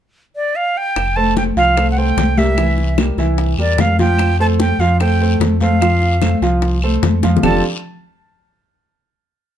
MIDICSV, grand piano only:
0, 0, Header, 1, 2, 480
1, 0, Start_track
1, 0, Key_signature, -1, "major"
1, 0, Tempo, 404858
1, 1136, Time_signature, 4, 2, 24, 8
1, 11349, End_track
2, 0, Start_track
2, 0, Title_t, "Grand piano"
2, 0, Program_c, 0, 0
2, 1379, Note_on_c, 0, 57, 68
2, 1380, Note_on_c, 0, 69, 70
2, 1384, Note_on_c, 0, 72, 72
2, 1770, Note_off_c, 0, 57, 0
2, 1770, Note_off_c, 0, 69, 0
2, 1773, Note_off_c, 0, 72, 0
2, 1860, Note_on_c, 0, 53, 69
2, 1864, Note_on_c, 0, 65, 78
2, 1864, Note_on_c, 0, 77, 73
2, 2054, Note_off_c, 0, 53, 0
2, 2056, Note_off_c, 0, 65, 0
2, 2056, Note_off_c, 0, 77, 0
2, 2097, Note_on_c, 0, 57, 64
2, 2099, Note_on_c, 0, 69, 60
2, 2102, Note_on_c, 0, 72, 62
2, 2292, Note_off_c, 0, 57, 0
2, 2293, Note_off_c, 0, 69, 0
2, 2295, Note_off_c, 0, 72, 0
2, 2345, Note_on_c, 0, 57, 60
2, 2348, Note_on_c, 0, 69, 63
2, 2352, Note_on_c, 0, 72, 69
2, 2733, Note_off_c, 0, 57, 0
2, 2735, Note_off_c, 0, 69, 0
2, 2737, Note_off_c, 0, 72, 0
2, 2812, Note_on_c, 0, 55, 62
2, 2815, Note_on_c, 0, 67, 64
2, 2820, Note_on_c, 0, 70, 60
2, 3008, Note_off_c, 0, 55, 0
2, 3010, Note_off_c, 0, 67, 0
2, 3013, Note_off_c, 0, 70, 0
2, 3053, Note_on_c, 0, 52, 71
2, 3058, Note_on_c, 0, 64, 70
2, 3065, Note_on_c, 0, 76, 71
2, 3445, Note_off_c, 0, 52, 0
2, 3448, Note_off_c, 0, 64, 0
2, 3452, Note_off_c, 0, 76, 0
2, 3536, Note_on_c, 0, 55, 60
2, 3540, Note_on_c, 0, 67, 57
2, 3543, Note_on_c, 0, 70, 53
2, 3730, Note_off_c, 0, 55, 0
2, 3733, Note_off_c, 0, 67, 0
2, 3734, Note_off_c, 0, 70, 0
2, 3773, Note_on_c, 0, 52, 78
2, 3775, Note_on_c, 0, 64, 72
2, 3782, Note_on_c, 0, 76, 81
2, 4165, Note_off_c, 0, 52, 0
2, 4166, Note_off_c, 0, 64, 0
2, 4170, Note_off_c, 0, 76, 0
2, 4253, Note_on_c, 0, 55, 66
2, 4254, Note_on_c, 0, 67, 60
2, 4260, Note_on_c, 0, 70, 63
2, 4645, Note_off_c, 0, 55, 0
2, 4645, Note_off_c, 0, 67, 0
2, 4649, Note_off_c, 0, 70, 0
2, 4733, Note_on_c, 0, 53, 76
2, 4735, Note_on_c, 0, 65, 77
2, 4740, Note_on_c, 0, 77, 74
2, 5125, Note_off_c, 0, 53, 0
2, 5126, Note_off_c, 0, 65, 0
2, 5129, Note_off_c, 0, 77, 0
2, 5213, Note_on_c, 0, 57, 67
2, 5218, Note_on_c, 0, 69, 73
2, 5219, Note_on_c, 0, 72, 75
2, 5605, Note_off_c, 0, 57, 0
2, 5608, Note_off_c, 0, 69, 0
2, 5609, Note_off_c, 0, 72, 0
2, 5693, Note_on_c, 0, 53, 79
2, 5698, Note_on_c, 0, 65, 71
2, 5704, Note_on_c, 0, 77, 80
2, 5889, Note_off_c, 0, 53, 0
2, 5891, Note_off_c, 0, 65, 0
2, 5895, Note_off_c, 0, 77, 0
2, 5932, Note_on_c, 0, 57, 62
2, 5937, Note_on_c, 0, 69, 62
2, 5942, Note_on_c, 0, 72, 59
2, 6128, Note_off_c, 0, 57, 0
2, 6131, Note_off_c, 0, 69, 0
2, 6134, Note_off_c, 0, 72, 0
2, 6180, Note_on_c, 0, 57, 62
2, 6180, Note_on_c, 0, 69, 70
2, 6186, Note_on_c, 0, 72, 65
2, 6570, Note_off_c, 0, 57, 0
2, 6570, Note_off_c, 0, 69, 0
2, 6573, Note_off_c, 0, 72, 0
2, 6659, Note_on_c, 0, 69, 68
2, 6660, Note_on_c, 0, 57, 73
2, 6666, Note_on_c, 0, 72, 63
2, 6853, Note_off_c, 0, 57, 0
2, 6853, Note_off_c, 0, 69, 0
2, 6857, Note_off_c, 0, 72, 0
2, 6895, Note_on_c, 0, 53, 74
2, 6900, Note_on_c, 0, 77, 72
2, 6901, Note_on_c, 0, 65, 69
2, 7288, Note_off_c, 0, 53, 0
2, 7291, Note_off_c, 0, 65, 0
2, 7291, Note_off_c, 0, 77, 0
2, 7377, Note_on_c, 0, 57, 60
2, 7378, Note_on_c, 0, 69, 59
2, 7382, Note_on_c, 0, 72, 52
2, 7572, Note_off_c, 0, 57, 0
2, 7573, Note_off_c, 0, 69, 0
2, 7575, Note_off_c, 0, 72, 0
2, 7615, Note_on_c, 0, 65, 82
2, 7616, Note_on_c, 0, 53, 81
2, 7622, Note_on_c, 0, 77, 77
2, 8008, Note_off_c, 0, 53, 0
2, 8008, Note_off_c, 0, 65, 0
2, 8012, Note_off_c, 0, 77, 0
2, 8101, Note_on_c, 0, 57, 67
2, 8107, Note_on_c, 0, 69, 69
2, 8108, Note_on_c, 0, 72, 69
2, 8492, Note_off_c, 0, 57, 0
2, 8496, Note_off_c, 0, 69, 0
2, 8496, Note_off_c, 0, 72, 0
2, 8573, Note_on_c, 0, 53, 77
2, 8577, Note_on_c, 0, 65, 74
2, 8584, Note_on_c, 0, 77, 77
2, 8771, Note_off_c, 0, 53, 0
2, 8773, Note_off_c, 0, 65, 0
2, 8777, Note_off_c, 0, 77, 0
2, 8811, Note_on_c, 0, 53, 82
2, 8812, Note_on_c, 0, 60, 82
2, 8817, Note_on_c, 0, 65, 81
2, 8818, Note_on_c, 0, 62, 79
2, 8823, Note_on_c, 0, 67, 77
2, 8823, Note_on_c, 0, 69, 90
2, 9036, Note_off_c, 0, 53, 0
2, 9037, Note_off_c, 0, 60, 0
2, 9039, Note_off_c, 0, 65, 0
2, 9040, Note_off_c, 0, 62, 0
2, 9043, Note_off_c, 0, 67, 0
2, 9043, Note_off_c, 0, 69, 0
2, 11349, End_track
0, 0, End_of_file